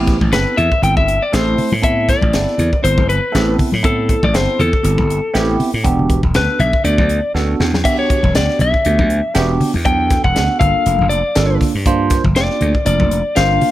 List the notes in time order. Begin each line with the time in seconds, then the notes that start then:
Already playing: A1 B3 C4 E4 G4
0.07 kick, snare, closed hi-hat
0.21 A1, kick, high conga
0.32 G1 B3 C4 E4 A4 B4, snare, closed hi-hat
0.57 E2 E5, closed hi-hat, low conga
0.72 kick
0.82 G1 B3 C4 E4 A4 G5, closed hi-hat
0.97 G1 E5, kick, high conga
1.08 closed hi-hat
1.23 D5
1.32 A1 A3 C4 E4 A4 C5, snare, closed hi-hat
1.58 open hi-hat, low conga
1.72 A2, high conga
1.82 B3 C4 E4 A4 E5, kick, closed hi-hat
2.09 D5, kick, snare, closed hi-hat
2.21 A1, kick, high conga
2.33 G1 B3 C4 E4 A4, snare, closed hi-hat
2.48 snare
2.58 E2, closed hi-hat, low conga
2.73 kick
2.83 G1 B3 C4 E4 A4 C5, closed hi-hat
2.98 G1, kick, high conga
3.09 B4, closed hi-hat
3.32 A1 B3 C4 E4 A4, snare, closed hi-hat
3.59 kick, open hi-hat, low conga
3.72 A2, high conga
3.83 B3 C4 E4 A4, kick, closed hi-hat
4.09 kick, closed hi-hat
4.23 A1 D5, kick, high conga
4.33 G1 B3 C4 E4 A4 C5, snare, closed hi-hat
4.59 E2 A4, closed hi-hat, low conga
4.73 kick
4.83 G1 B3 C4 E4 G4, closed hi-hat
4.98 G1, kick, high conga
5.10 closed hi-hat
5.33 A1 B3 C4 E4 G4, snare, closed hi-hat
5.60 open hi-hat, low conga
5.74 A2
5.84 E1 B3 D4 F#4 G4, kick, closed hi-hat
5.99 low conga
6.10 kick, closed hi-hat
6.23 E1, kick, high conga
6.34 D2 B3 D4 F#4 A4 B4, snare, closed hi-hat
6.59 B1 E5, closed hi-hat, low conga
6.73 kick
6.84 D2 B3 D4 F#4 A4 D5, closed hi-hat
6.98 D2, kick, high conga
7.09 closed hi-hat
7.35 D2 B3 D4 F#4 A4, snare
7.60 E2, snare, low conga
7.74 snare, high conga
7.84 B3 D4 F#4 G4 E5, kick, closed hi-hat, crash
7.99 C#5
8.10 kick, closed hi-hat
8.23 E1, kick, high conga
8.35 D2 B3 D4 F#4 G4 D5, snare, closed hi-hat
8.49 snare
8.59 B1 E5, closed hi-hat, low conga
8.74 kick
8.85 D2 B3 D4 F#4 G4, closed hi-hat
8.99 D2, kick, high conga
9.10 closed hi-hat
9.34 E1 B3 D4 F#4 G4, snare, closed hi-hat
9.60 open hi-hat, low conga
9.74 E2, high conga
9.85 F#3 B3 D4 A4 G5, kick, closed hi-hat
10.10 kick, snare, closed hi-hat
10.24 E1 F#5, kick
10.34 D2 B3 D4 F#4 A4, snare, closed hi-hat
10.59 G1 A#3 D4 F4 A4 F5, kick, closed hi-hat, low conga
10.86 F1, closed hi-hat
10.99 F1, high conga
11.09 D5, closed hi-hat
11.35 G1 A#3 D4 F4 A4, snare, closed hi-hat
11.60 kick, snare, open hi-hat, low conga
11.75 G2
11.86 A#3 D4 F4 C5, kick, closed hi-hat
12.10 kick, snare, closed hi-hat
12.24 G1, kick, high conga
12.36 F1 A#3 D4 F4 G4 D5, snare, closed hi-hat
12.50 snare
12.61 D2, closed hi-hat, low conga
12.75 kick
12.85 F1 A#3 D4 F4 A#4 D5, closed hi-hat
12.99 F1, kick, high conga
13.11 closed hi-hat
13.35 G1 A#3 D4 F4 C5 F5, snare, closed hi-hat
13.61 open hi-hat, low conga